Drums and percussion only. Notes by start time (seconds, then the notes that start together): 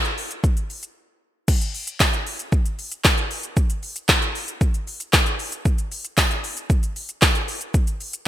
0.05 closed hi-hat, shaker
0.18 open hi-hat, shaker
0.31 closed hi-hat, shaker
0.44 kick, shaker
0.57 closed hi-hat, shaker
0.70 open hi-hat, shaker
0.83 closed hi-hat, shaker
1.48 kick, crash, shaker
1.61 closed hi-hat, shaker
1.74 open hi-hat, shaker
1.87 closed hi-hat, shaker
2.00 kick, snare, clap, tambourine, shaker
2.13 closed hi-hat, shaker
2.27 open hi-hat, shaker
2.39 closed hi-hat, shaker
2.52 kick, shaker
2.66 closed hi-hat, shaker
2.79 open hi-hat, shaker
2.92 closed hi-hat, shaker
3.04 kick, snare, clap, tambourine, shaker
3.18 closed hi-hat, shaker
3.31 open hi-hat, shaker
3.43 closed hi-hat, shaker
3.57 kick, shaker
3.70 closed hi-hat, shaker
3.83 open hi-hat, shaker
3.96 closed hi-hat, shaker
4.09 kick, snare, clap, tambourine, shaker
4.22 closed hi-hat, shaker
4.35 open hi-hat, shaker
4.48 closed hi-hat, shaker
4.61 kick, shaker
4.74 closed hi-hat, shaker
4.87 open hi-hat, shaker
5.00 closed hi-hat, shaker
5.13 kick, snare, clap, tambourine, shaker
5.26 closed hi-hat, shaker
5.39 open hi-hat, shaker
5.52 closed hi-hat, shaker
5.65 kick, shaker
5.78 closed hi-hat, shaker
5.92 open hi-hat, shaker
6.05 closed hi-hat, shaker
6.17 kick, snare, clap, tambourine, shaker
6.31 closed hi-hat, shaker
6.44 open hi-hat, shaker
6.57 closed hi-hat, shaker
6.70 kick, shaker
6.83 closed hi-hat, shaker
6.96 open hi-hat, shaker
7.09 closed hi-hat, shaker
7.22 kick, snare, clap, tambourine, shaker
7.35 closed hi-hat, shaker
7.48 open hi-hat, shaker
7.61 closed hi-hat, shaker
7.74 kick, shaker
7.87 closed hi-hat, shaker
8.01 open hi-hat, shaker
8.13 closed hi-hat, shaker